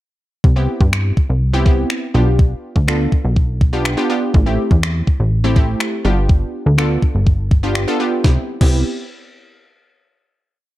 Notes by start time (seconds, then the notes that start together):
0.44 C2, kick
0.56 B3 C4 E4 G4
0.81 G2, kick
0.93 finger snap
1.17 kick
1.29 C2
1.53 B3 C4 E4 G4
1.66 B3 C4 E4 G4, kick
1.90 finger snap
2.14 B1 B3 D4 F4 G4
2.39 kick
2.76 D2, kick
2.87 B3 D4 F4 A4, finger snap
3.12 kick
3.24 B1
3.36 kick
3.61 kick
3.73 B3 D4 F4 G4
3.85 finger snap
3.97 B3 D4 F4 G4
4.09 B3 D4 F4 G4
4.34 A1, kick
4.46 A3 C4 E4 G4
4.71 E2, kick
4.83 finger snap
5.07 kick
5.20 A1
5.44 A3 C4 E4 G4
5.56 A3 C4 E4 G4, kick
5.80 finger snap
6.05 G1 B3 D4 F4 G4
6.29 kick
6.66 D2
6.78 B3 D4 F4 A4, finger snap
7.02 kick
7.15 G1
7.27 kick
7.51 kick
7.63 B3 D4 F4 G4
7.75 finger snap
7.88 B3 D4 F4 A4
8.00 B3 D4 F4 G4
8.24 C2 B3 C4 E4 G4, kick, snare
8.61 C2 B3 C4 E4 G4, kick, crash